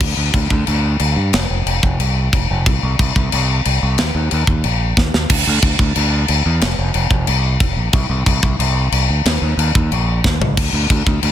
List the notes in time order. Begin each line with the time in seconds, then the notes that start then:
0.00 D2, kick, china, crash
0.17 D2
0.34 D2, kick, china
0.50 D2, kick
0.67 D2, china
0.99 D2, china
1.16 G2
1.33 F1, snare, china
1.50 F1
1.66 F1, china
1.83 F1, kick
1.99 C2, china
2.33 F1, kick, china
2.51 F1
2.66 C2, kick, china
2.83 C2
2.99 C2, kick, china
3.16 C2, kick
3.32 C2, china
3.65 C2, china
3.83 C2
3.98 D#2, snare, china
4.15 D#2
4.31 D#2, china
4.47 D#2, kick
4.64 A#1, china
4.97 D#2, kick, snare
5.14 D#2, snare
5.30 D2, kick, crash, china
5.47 D2
5.62 D2, kick, china
5.79 D2, kick
5.96 D2, china
6.28 D2, china
6.46 E2
6.61 F1, snare, china
6.78 F1
6.94 F1, china
7.11 F1, kick
7.27 C2, china
7.60 F1, kick, china
7.77 A#1
7.93 C2, kick, china
8.09 C2
8.26 C2, kick, china
8.43 C2, kick
8.59 C2, china
8.92 C2, china
9.09 D2
9.25 D#2, snare, china
9.42 D#2
9.57 D#2, china
9.75 D#2, kick
9.91 A#1, china
10.24 D#2, kick, snare
10.40 C#2, floor tom
10.57 D2, kick, china, splash, crash
10.73 D2
10.90 D2, kick, china
11.06 D2, kick
11.23 D2, china